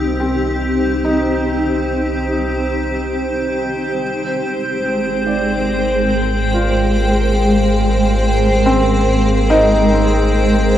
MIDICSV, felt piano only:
0, 0, Header, 1, 2, 480
1, 0, Start_track
1, 0, Tempo, 845070
1, 840, Time_signature, 3, 2, 24, 8
1, 6122, End_track
2, 0, Start_track
2, 0, Title_t, "Felt piano"
2, 0, Program_c, 0, 0
2, 0, Control_c, 0, 64, 127
2, 0, Note_on_c, 0, 87, 58
2, 113, Note_on_c, 0, 60, 73
2, 149, Note_off_c, 0, 87, 0
2, 573, Note_off_c, 0, 60, 0
2, 594, Note_on_c, 0, 63, 76
2, 1588, Note_off_c, 0, 63, 0
2, 2288, Control_c, 0, 64, 0
2, 2397, Control_c, 0, 64, 127
2, 2992, Note_on_c, 0, 74, 52
2, 3716, Note_on_c, 0, 65, 56
2, 3987, Note_off_c, 0, 74, 0
2, 4709, Note_off_c, 0, 65, 0
2, 4918, Note_on_c, 0, 60, 84
2, 5375, Note_off_c, 0, 60, 0
2, 5395, Note_on_c, 0, 63, 85
2, 5397, Note_on_c, 0, 75, 79
2, 6122, Note_off_c, 0, 63, 0
2, 6122, Note_off_c, 0, 75, 0
2, 6122, End_track
0, 0, End_of_file